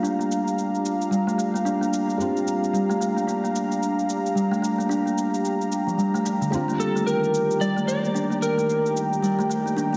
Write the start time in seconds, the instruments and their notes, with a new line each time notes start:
Already playing: felt piano G3 C4 F4, analog synth pad D4 G4 F5 A#5, singing bowl F4
0.03 kalimba D4, shaker
0.19 kalimba A#3, shaker
0.32 shaker
0.48 shaker
0.59 shaker
0.75 shaker
0.86 shaker
1.02 shaker
1.11 kalimba G3, shaker
1.27 kalimba A3, shaker
1.38 kalimba A3, shaker
1.54 kalimba A#3, shaker
1.65 kalimba D4, shaker
1.81 kalimba A#3, shaker
1.93 shaker
2.10 shaker
2.18 felt piano G3 C4 F4, shaker
2.37 shaker
2.48 shaker
2.64 shaker
2.73 kalimba G3, shaker
2.89 kalimba A3, shaker
3.00 kalimba A3, shaker
3.16 kalimba A#3, shaker
3.27 kalimba D4, shaker
3.44 kalimba A#3, shaker
3.56 shaker
3.72 shaker
3.83 shaker
3.99 shaker
4.10 shaker
4.26 shaker
4.35 kalimba G3, shaker
4.51 kalimba A3, shaker
4.62 kalimba A3, shaker
4.78 kalimba A#3, shaker
4.89 kalimba D4, shaker
5.06 kalimba A#3, shaker
5.18 shaker
5.34 shaker
5.45 shaker
5.61 shaker
5.72 shaker
5.87 kalimba F3, shaker
5.98 kalimba G3, shaker
6.14 kalimba A3, shaker
6.25 kalimba D4, shaker
6.41 kalimba D3, shaker
6.50 analog synth pad D#3 G3 G5, felt piano G3 C4 F4, kalimba D4, shaker
6.68 kalimba A#3, shaker
6.80 electric slide guitar A4, shaker
6.95 kalimba A3, shaker
7.07 electric slide guitar A#4, shaker
7.24 shaker
7.34 shaker
7.51 shaker
7.60 kalimba G3, electric slide guitar D5, shaker
7.77 kalimba A3, shaker
7.87 kalimba A3, electric slide guitar D5, shaker
8.04 kalimba A#3, shaker
8.15 kalimba D4, shaker
8.30 kalimba A#3, shaker
8.42 electric slide guitar A#4, shaker
8.58 kalimba A3, shaker
8.70 shaker
8.86 shaker
8.97 shaker
9.13 shaker
9.23 kalimba G3, shaker
9.39 kalimba A3, shaker
9.50 kalimba A3, shaker
9.66 kalimba A#3, shaker
9.77 kalimba D4, shaker
9.93 kalimba A#3